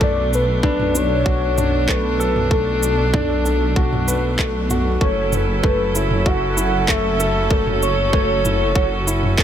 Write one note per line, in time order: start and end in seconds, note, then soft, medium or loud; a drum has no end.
0.00 4.98 B1 medium
0.00 4.97 A3 medium
0.00 0.31 A3 medium
0.00 4.97 B3 medium
0.00 4.97 D4 medium
0.00 0.31 D5 loud
0.00 kick loud
0.00 mid tom medium
0.33 0.98 B4 loud
0.33 shaker medium
0.63 0.93 D4 loud
0.63 kick medium
0.80 mid tom medium
0.95 1.13 D4 medium
0.95 1.92 C#5 loud
0.95 shaker medium
1.26 1.56 F#4 medium
1.26 kick loud
1.58 1.87 D4 medium
1.58 mid tom medium
1.58 shaker medium
1.88 2.18 A3 loud
1.88 2.53 B4 loud
1.88 kick medium
1.88 clap medium
2.20 2.50 A4 loud
2.20 shaker medium
2.36 mid tom medium
2.51 2.81 A3 medium
2.51 4.39 A4 medium
2.51 kick medium
2.83 shaker medium
3.14 3.44 D4 loud
3.14 kick loud
3.14 mid tom medium
3.45 3.63 D4 medium
3.45 shaker medium
3.76 4.06 F#4 medium
3.76 kick loud
3.93 mid tom medium
4.08 4.25 B4 medium
4.08 shaker medium
4.39 4.69 A3 medium
4.39 kick medium
4.39 clap medium
4.70 4.88 F#4 medium
4.70 mid tom medium
4.70 shaker medium
5.00 9.44 F#1 loud
5.00 9.44 F#3 medium
5.00 5.31 A3 medium
5.00 9.44 C#4 medium
5.00 7.48 E4 medium
5.00 9.44 A4 medium
5.00 5.35 C#5 loud
5.00 kick loud
5.33 5.98 B4 loud
5.33 mid tom medium
5.33 shaker medium
5.64 5.94 A3 loud
5.64 kick loud
5.95 6.13 E4 medium
5.95 6.29 C#5 loud
5.95 shaker medium
6.11 mid tom medium
6.26 6.56 F#4 medium
6.26 6.91 F#5 loud
6.26 kick loud
6.57 6.87 E4 medium
6.57 shaker medium
6.88 7.18 A3 loud
6.88 7.53 E5 loud
6.88 kick loud
6.88 clap medium
6.88 mid tom medium
7.20 7.50 A4 loud
7.20 shaker medium
7.51 7.81 A3 medium
7.51 9.44 F#4 medium
7.51 7.82 C#5 loud
7.51 kick loud
7.67 mid tom medium
7.82 9.44 C#5 loud
7.82 shaker medium
8.13 8.44 A3 loud
8.13 kick loud
8.45 8.63 E4 medium
8.45 mid tom medium
8.45 shaker medium
8.76 9.06 F#4 medium
8.76 kick loud
9.07 9.37 E4 medium
9.07 shaker medium
9.23 mid tom medium
9.38 9.44 A3 loud
9.38 kick loud
9.38 clap medium